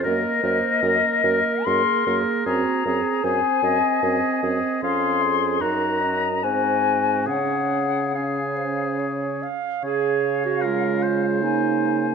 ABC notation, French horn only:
X:1
M:3/4
L:1/8
Q:1/4=75
K:Db
V:1 name="French horn"
B, B, B, B, B, B, | C C C C C C | D2 E D C2 | D2 D3 z |
z2 A,2 B,2 |]